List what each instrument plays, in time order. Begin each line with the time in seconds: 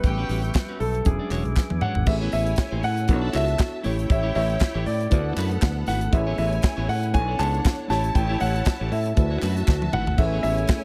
Already playing: reed electric piano G3 B3 C#4 G4, grand piano B4, tonewheel organ B4 E5 G5 C#6
0.04 fingered electric bass A1, string section G4 G5, kick, closed hi-hat
0.18 clean electric guitar G3 C#4 F#4 B4
0.29 fingered electric bass A1, clean electric guitar G3 C#4 F#4 B4, open hi-hat
0.43 muted clean electric guitar stroke, closed hi-hat
0.54 kick, snare, clap, closed hi-hat
0.68 clean electric guitar G3 C#4 F#4 B4
0.80 fingered electric bass B1, grand piano A4, muted clean electric guitar stroke, open hi-hat
0.94 muted clean electric guitar stroke, closed hi-hat
1.04 fingered electric bass E1, reed electric piano F#3 C#4 D4 G#4, grand piano G#4, tonewheel organ B4 G#5 D6, muted clean electric guitar stroke, kick, closed hi-hat
1.19 clean electric guitar G#3 D4 F#4 D5
1.30 fingered electric bass E1, clean electric guitar G#3 D4 F#4 C#5, clap, open hi-hat
1.45 fingered electric bass B1, muted clean electric guitar stroke, closed hi-hat
1.56 kick, snare, clap
1.70 fingered electric bass E2, muted clean electric guitar stroke, high tom
1.81 clean electric guitar G#3 D4 F#4 C#5, grand piano F#5, mid tom
1.95 fingered electric bass G#1, muted clean electric guitar stroke, floor tom
2.05 fingered electric bass A1, reed electric piano A3 C4 E4 G#4 B4, string section E4 C#5 G#5, grand piano E5, muted clean electric guitar stroke, kick, crash
2.12 reed electric piano C#4
2.21 clean electric guitar B3 E4 G#4 C#5
2.32 fingered electric bass A1, clean electric guitar B3 E4 G#4 C#5, grand piano E5, open hi-hat
2.47 muted clean electric guitar stroke, closed hi-hat
2.56 muted clean electric guitar stroke, kick, snare, clap, closed hi-hat
2.72 fingered electric bass A1, clean electric guitar B3 E4 G#4 C#5
2.83 fingered electric bass A2, grand piano F#5, muted clean electric guitar stroke, open hi-hat
2.97 muted clean electric guitar stroke, closed hi-hat
3.08 fingered electric bass B1, reed electric piano B3 D4 E4 A4 B4, string section F#4 E5 A5, muted clean electric guitar stroke, kick, closed hi-hat
3.16 reed electric piano C#5
3.22 clean electric guitar D4 E4 A4 D5
3.33 fingered electric bass C#2, clean electric guitar D4 E4 A4 C#5, grand piano E5, clap, open hi-hat
3.47 muted clean electric guitar stroke, closed hi-hat
3.59 kick, snare, clap, closed hi-hat
3.72 muted clean electric guitar stroke
3.83 fingered electric bass A1, clean electric guitar A3 E4 G4 C#5, reed electric piano A3 C#4 E4 G4 C#5, string section E4 C#5 G5, open hi-hat
3.98 muted clean electric guitar stroke, closed hi-hat
4.09 fingered electric bass A1, grand piano E5, muted clean electric guitar stroke, kick, closed hi-hat
4.23 clean electric guitar A3 E4 G4 C#5
4.34 fingered electric bass A1, clean electric guitar A3 E4 G4 C#5, grand piano E5, open hi-hat
4.49 muted clean electric guitar stroke, closed hi-hat
4.60 kick, snare, clap, closed hi-hat
4.74 fingered electric bass A1, clean electric guitar A3 E4 G4 C#5
4.86 fingered electric bass A2, grand piano D5, muted clean electric guitar stroke, open hi-hat
5.00 muted clean electric guitar stroke, closed hi-hat
5.10 fingered electric bass D2, reed electric piano A3 D4 E4 F#4 B4, string section B3 A4 F#5, kick, closed hi-hat
5.26 muted clean electric guitar stroke
5.36 fingered electric bass F#2, clean electric guitar A3 E4 F#4 B4, clap, open hi-hat
5.51 muted clean electric guitar stroke, closed hi-hat
5.62 fingered electric bass D2, kick, snare, clap, closed hi-hat
5.77 muted clean electric guitar stroke
5.87 fingered electric bass G#1, clean electric guitar A3 E4 F#4 B4, grand piano F#5, snare, open hi-hat
6.01 muted clean electric guitar stroke, closed hi-hat
6.11 fingered electric bass A1, reed electric piano A3 C#4 E4 G#4 B4, string section E4 C#5 G#5, grand piano E5, kick, closed hi-hat
6.27 clean electric guitar B3 E4 G#4 C#5
6.38 fingered electric bass A1, clean electric guitar B3 E4 G#4 C#5, grand piano E5, open hi-hat
6.52 muted clean electric guitar stroke, closed hi-hat
6.62 kick, snare, clap, closed hi-hat
6.77 fingered electric bass A1, clean electric guitar B3 E4 G#4 C#5
6.88 fingered electric bass A2, grand piano F#5, muted clean electric guitar stroke, open hi-hat
7.02 muted clean electric guitar stroke, closed hi-hat
7.13 fingered electric bass B1, reed electric piano B3 D4 E4 A4 C#5, string section D4 C#5 F#5, grand piano G#5, kick, closed hi-hat
7.28 clean electric guitar D4 E4 A4 D5
7.39 fingered electric bass C#2, clean electric guitar D4 E4 A4 C#5, grand piano A5, clap, open hi-hat
7.54 muted clean electric guitar stroke, closed hi-hat
7.65 kick, snare, clap, closed hi-hat
7.79 muted clean electric guitar stroke
7.88 fingered electric bass A1, reed electric piano A3 C#4 E4 G4 C#5, clean electric guitar A3 E4 G4 C#5, string section E4 C#5 A5, grand piano A5, snare, open hi-hat
8.04 muted clean electric guitar stroke, closed hi-hat
8.15 fingered electric bass A1, grand piano G5, kick, closed hi-hat
8.29 clean electric guitar A3 E4 G4 C#5
8.40 fingered electric bass A1, clean electric guitar A3 E4 G4 C#5, grand piano F#5, open hi-hat
8.55 muted clean electric guitar stroke, closed hi-hat
8.65 kick, snare, clap, closed hi-hat
8.80 fingered electric bass A1, clean electric guitar A3 E4 G4 C#5
8.91 fingered electric bass A2, grand piano E5, muted clean electric guitar stroke, open hi-hat
9.06 muted clean electric guitar stroke, closed hi-hat
9.15 fingered electric bass D2, reed electric piano A3 D4 E4 F#4 B4, string section F#4 E5 A5, muted clean electric guitar stroke, kick, closed hi-hat
9.31 clean electric guitar A3 E4 F#4 C#5
9.42 fingered electric bass F#2, clean electric guitar A3 E4 F#4 B4, clap, open hi-hat
9.56 muted clean electric guitar stroke, closed hi-hat
9.68 fingered electric bass D2, kick, snare, clap
9.82 muted clean electric guitar stroke, high tom
9.93 fingered electric bass G#1, clean electric guitar A3 E4 F#4 B4, grand piano F#5, mid tom
10.07 muted clean electric guitar stroke, floor tom
10.17 fingered electric bass A1, reed electric piano A3 C#4 E4 G#4 A4, tonewheel organ A3 C#4 G#4, string section E4 C#5 G#5, grand piano E5, muted clean electric guitar stroke, kick, crash
10.26 reed electric piano B4
10.33 clean electric guitar B3 E4 G#4 C#5
10.43 fingered electric bass A1, clean electric guitar B3 E4 G#4 C#5, grand piano E5, open hi-hat
10.58 muted clean electric guitar stroke, closed hi-hat
10.68 kick, snare, clap, closed hi-hat